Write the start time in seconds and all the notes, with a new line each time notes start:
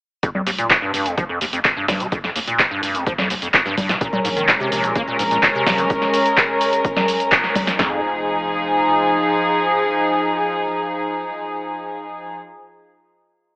0.23 F2, kick, closed hi-hat, shaker
0.35 F2, low conga
0.47 F1 D#2, open hi-hat, shaker
0.58 A#2, closed hi-hat, shaker
0.70 F2, kick, clap, closed hi-hat, shaker
0.82 G2
0.94 F1 G2, open hi-hat, shaker
1.06 F2, closed hi-hat, shaker
1.17 F3, kick, closed hi-hat, shaker
1.29 F2
1.41 F1 D#2, open hi-hat, shaker
1.53 F2, closed hi-hat, shaker
1.65 F2, kick, clap, closed hi-hat, shaker
1.77 G2
1.88 F1 G2, kick, snare, open hi-hat, low conga, shaker
2.00 C3, closed hi-hat, shaker
2.12 F2, kick, closed hi-hat, shaker
2.24 F2, snare
2.36 F1 D#2, open hi-hat, shaker
2.47 A#2, closed hi-hat, shaker
2.59 F2, kick, clap, closed hi-hat, shaker
2.71 G2
2.83 F1 G2, open hi-hat, shaker
2.95 F2, closed hi-hat, shaker
3.06 F3, kick, closed hi-hat, shaker
3.18 F2, snare, low conga
3.30 F1 D#2, open hi-hat, shaker
3.42 F2, closed hi-hat, shaker
3.54 F2, kick, clap, closed hi-hat, shaker
3.66 G2, snare
3.77 F1 G2, kick, open hi-hat, low conga, shaker
3.89 C3, snare, closed hi-hat, shaker
4.01 A#2 G#3 C#4 A#4, kick, closed hi-hat, shaker
4.13 A#2, low conga
4.24 A#1 G#2, open hi-hat, shaker
4.36 D#3, closed hi-hat, shaker
4.48 A#2, kick, clap, closed hi-hat, shaker
4.60 C3
4.72 A#1 C3, open hi-hat, shaker
4.84 A#2, closed hi-hat, shaker
4.96 A#3, kick, closed hi-hat, shaker
5.07 A#2
5.19 A#1 G#2, open hi-hat, shaker
5.31 A#2, closed hi-hat, shaker
5.43 A#2, kick, clap, closed hi-hat, shaker
5.55 C3
5.66 A#1 C3, kick, snare, open hi-hat, low conga, shaker
5.78 F3, closed hi-hat, shaker
5.90 kick, closed hi-hat, shaker
6.02 snare
6.14 open hi-hat, shaker
6.26 closed hi-hat, shaker
6.37 kick, clap, closed hi-hat, shaker
6.61 open hi-hat, shaker
6.73 closed hi-hat, shaker
6.85 kick, closed hi-hat, shaker
6.96 snare, low conga
7.08 open hi-hat, shaker
7.20 closed hi-hat, shaker
7.32 kick, clap, closed hi-hat, shaker
7.44 snare
7.55 kick, open hi-hat, low conga, shaker
7.67 snare, closed hi-hat, shaker
7.79 F1 F2 F3 D#4 G#4, kick, snare